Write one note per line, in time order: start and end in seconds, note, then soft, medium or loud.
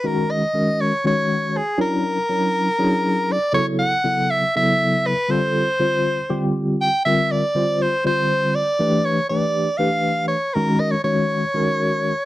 0.04 0.42 D#3 medium
0.04 0.42 G#3 medium
0.04 0.42 C#4 medium
0.04 0.42 F#4 medium
0.04 0.43 A#4 medium
0.04 0.32 A#4 medium
0.31 0.82 D#5 medium
0.54 0.92 D#3 medium
0.54 0.92 G#3 medium
0.54 0.92 C#4 medium
0.54 0.92 F#4 soft
0.54 0.92 A#4 medium
0.81 1.05 C#5 medium
1.04 1.61 D#3 medium
1.04 1.61 G#3 medium
1.04 1.61 C#4 medium
1.04 1.62 F#4 medium
1.04 1.62 C#5 medium
1.04 1.58 C#5 medium
1.57 1.81 G#4 medium
1.78 2.17 F#3 medium
1.78 2.17 C#4 medium
1.78 2.17 D4 medium
1.78 2.17 E4 medium
1.78 2.17 A#4 medium
1.78 3.34 A#4 medium
2.29 2.67 F#3 medium
2.29 2.67 C#4 medium
2.29 2.67 D4 soft
2.29 2.68 E4 medium
2.29 2.68 A#4 medium
2.79 3.36 F#3 medium
2.79 3.36 C#4 medium
2.79 3.36 D4 medium
2.79 3.36 E4 medium
2.79 3.36 G#4 medium
3.32 3.54 D5 medium
3.52 3.91 C#3 medium
3.52 3.92 F#3 medium
3.52 3.92 B3 medium
3.52 3.92 E4 medium
3.52 3.92 A4 medium
3.52 3.66 C#5 loud
3.79 4.32 F#5 loud
4.04 4.42 C#3 medium
4.04 4.42 F#3 medium
4.04 4.42 B3 medium
4.04 4.42 E4 medium
4.04 4.43 A4 medium
4.31 4.55 E5 loud
4.56 5.12 C#3 medium
4.56 5.12 F#3 medium
4.56 5.12 B3 medium
4.56 5.12 E4 medium
4.56 5.12 A4 medium
4.56 5.08 E5 loud
5.07 5.33 B4 medium
5.28 5.67 D3 medium
5.28 5.67 G3 medium
5.28 5.67 C4 medium
5.28 5.67 F4 medium
5.28 5.67 A4 medium
5.28 6.54 C5 medium
5.79 6.17 D3 medium
5.79 6.17 G3 soft
5.79 6.18 C4 medium
5.79 6.18 F4 medium
5.79 6.18 C5 medium
6.29 6.86 D3 medium
6.29 6.86 G3 medium
6.29 6.87 C4 medium
6.29 6.87 F4 medium
6.29 6.87 G4 medium
6.81 7.04 G5 loud
7.05 7.43 D3 medium
7.05 7.43 G3 medium
7.05 7.43 C4 medium
7.05 7.44 F4 medium
7.05 7.44 A#4 medium
7.05 7.33 E5 loud
7.32 7.83 D5 medium
7.55 7.93 D3 medium
7.55 7.93 G3 medium
7.55 7.93 C4 medium
7.55 7.93 F4 medium
7.55 7.93 C5 medium
7.82 8.06 C5 medium
8.05 8.61 D3 medium
8.05 8.61 G3 medium
8.05 8.62 C4 medium
8.05 8.62 F4 medium
8.05 8.62 C5 medium
8.05 8.56 C5 loud
8.55 9.07 D5 medium
8.79 9.17 E3 medium
8.79 9.17 A3 medium
8.79 9.18 D4 medium
8.79 9.18 G4 medium
8.79 9.18 B4 medium
9.05 9.29 C#5 medium
9.29 9.68 E3 medium
9.29 9.68 A3 medium
9.29 9.68 D4 medium
9.29 9.68 G4 medium
9.29 9.69 B4 medium
9.29 9.80 D5 medium
9.78 10.36 E3 medium
9.78 10.36 A3 medium
9.78 10.36 D4 medium
9.78 10.37 G4 medium
9.78 10.37 B4 medium
9.78 10.27 F5 loud
10.28 10.55 C#5 medium
10.54 10.93 D#3 medium
10.54 10.93 G#3 medium
10.54 10.93 C#4 medium
10.54 10.93 F#4 medium
10.54 10.82 A#4 medium
10.54 10.94 A#4 medium
10.80 10.93 D#5 medium
10.91 11.03 C#5 medium
11.04 11.43 D#3 medium
11.04 11.43 G#3 medium
11.04 11.43 C#4 medium
11.04 11.43 F#4 medium
11.04 12.25 C#5 medium
11.04 11.43 C#5 medium
11.54 12.11 D#3 medium
11.54 12.11 G#3 medium
11.54 12.12 C#4 medium
11.54 12.12 F#4 medium
11.54 12.12 A#4 medium